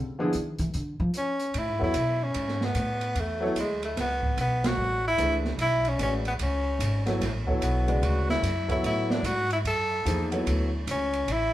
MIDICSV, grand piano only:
0, 0, Header, 1, 2, 480
1, 0, Start_track
1, 0, Key_signature, 3, "major"
1, 0, Tempo, 405132
1, 1826, Time_signature, 4, 2, 24, 8
1, 13664, End_track
2, 0, Start_track
2, 0, Title_t, "Grand piano"
2, 0, Program_c, 0, 0
2, 222, Note_on_c, 0, 53, 70
2, 229, Note_on_c, 0, 59, 69
2, 235, Note_on_c, 0, 62, 70
2, 240, Note_on_c, 0, 64, 69
2, 244, Note_on_c, 0, 68, 86
2, 377, Note_off_c, 0, 53, 0
2, 381, Note_off_c, 0, 59, 0
2, 383, Note_off_c, 0, 62, 0
2, 386, Note_off_c, 0, 64, 0
2, 388, Note_off_c, 0, 68, 0
2, 2124, Note_on_c, 0, 54, 65
2, 2125, Note_on_c, 0, 59, 60
2, 2133, Note_on_c, 0, 64, 61
2, 2138, Note_on_c, 0, 69, 59
2, 2150, Note_on_c, 0, 73, 73
2, 2282, Note_off_c, 0, 54, 0
2, 2283, Note_off_c, 0, 59, 0
2, 2287, Note_off_c, 0, 64, 0
2, 2289, Note_off_c, 0, 69, 0
2, 2295, Note_off_c, 0, 73, 0
2, 4034, Note_on_c, 0, 54, 75
2, 4040, Note_on_c, 0, 59, 64
2, 4047, Note_on_c, 0, 64, 69
2, 4054, Note_on_c, 0, 69, 67
2, 4059, Note_on_c, 0, 73, 81
2, 4195, Note_off_c, 0, 54, 0
2, 4198, Note_off_c, 0, 59, 0
2, 4202, Note_off_c, 0, 64, 0
2, 4205, Note_off_c, 0, 69, 0
2, 4208, Note_off_c, 0, 73, 0
2, 6133, Note_on_c, 0, 52, 56
2, 6136, Note_on_c, 0, 57, 53
2, 6138, Note_on_c, 0, 62, 53
2, 6144, Note_on_c, 0, 68, 55
2, 6149, Note_on_c, 0, 71, 65
2, 6414, Note_off_c, 0, 52, 0
2, 6416, Note_off_c, 0, 57, 0
2, 6417, Note_off_c, 0, 62, 0
2, 6420, Note_off_c, 0, 68, 0
2, 6422, Note_off_c, 0, 71, 0
2, 7096, Note_on_c, 0, 56, 50
2, 7101, Note_on_c, 0, 61, 42
2, 7108, Note_on_c, 0, 66, 45
2, 7111, Note_on_c, 0, 71, 43
2, 7123, Note_on_c, 0, 74, 50
2, 7377, Note_off_c, 0, 56, 0
2, 7379, Note_off_c, 0, 61, 0
2, 7383, Note_off_c, 0, 66, 0
2, 7384, Note_off_c, 0, 71, 0
2, 7390, Note_off_c, 0, 74, 0
2, 8363, Note_on_c, 0, 54, 64
2, 8371, Note_on_c, 0, 59, 55
2, 8377, Note_on_c, 0, 64, 60
2, 8382, Note_on_c, 0, 69, 55
2, 8389, Note_on_c, 0, 73, 71
2, 8523, Note_off_c, 0, 54, 0
2, 8527, Note_off_c, 0, 59, 0
2, 8530, Note_off_c, 0, 64, 0
2, 8533, Note_off_c, 0, 69, 0
2, 8536, Note_off_c, 0, 73, 0
2, 8847, Note_on_c, 0, 59, 61
2, 8848, Note_on_c, 0, 54, 66
2, 8858, Note_on_c, 0, 64, 60
2, 8862, Note_on_c, 0, 69, 62
2, 8870, Note_on_c, 0, 73, 74
2, 9301, Note_off_c, 0, 54, 0
2, 9301, Note_off_c, 0, 59, 0
2, 9306, Note_off_c, 0, 64, 0
2, 9309, Note_off_c, 0, 69, 0
2, 9312, Note_off_c, 0, 73, 0
2, 9332, Note_on_c, 0, 56, 69
2, 9333, Note_on_c, 0, 49, 63
2, 9337, Note_on_c, 0, 66, 61
2, 9344, Note_on_c, 0, 71, 60
2, 9352, Note_on_c, 0, 74, 78
2, 9953, Note_off_c, 0, 49, 0
2, 9953, Note_off_c, 0, 56, 0
2, 9955, Note_off_c, 0, 66, 0
2, 9959, Note_off_c, 0, 71, 0
2, 9963, Note_off_c, 0, 74, 0
2, 10288, Note_on_c, 0, 54, 75
2, 10294, Note_on_c, 0, 59, 64
2, 10294, Note_on_c, 0, 64, 66
2, 10301, Note_on_c, 0, 69, 63
2, 10311, Note_on_c, 0, 73, 80
2, 10912, Note_off_c, 0, 54, 0
2, 10916, Note_off_c, 0, 59, 0
2, 10916, Note_off_c, 0, 64, 0
2, 10919, Note_off_c, 0, 69, 0
2, 10924, Note_off_c, 0, 73, 0
2, 11909, Note_on_c, 0, 53, 58
2, 11917, Note_on_c, 0, 58, 57
2, 11919, Note_on_c, 0, 68, 55
2, 11920, Note_on_c, 0, 63, 56
2, 11934, Note_on_c, 0, 72, 66
2, 12190, Note_off_c, 0, 53, 0
2, 12195, Note_off_c, 0, 58, 0
2, 12195, Note_off_c, 0, 68, 0
2, 12196, Note_off_c, 0, 63, 0
2, 12203, Note_off_c, 0, 72, 0
2, 12216, Note_on_c, 0, 54, 62
2, 12228, Note_on_c, 0, 59, 62
2, 12232, Note_on_c, 0, 64, 58
2, 12232, Note_on_c, 0, 69, 59
2, 12243, Note_on_c, 0, 73, 73
2, 12640, Note_off_c, 0, 54, 0
2, 12646, Note_off_c, 0, 59, 0
2, 12648, Note_off_c, 0, 64, 0
2, 12648, Note_off_c, 0, 69, 0
2, 12654, Note_off_c, 0, 73, 0
2, 13664, End_track
0, 0, End_of_file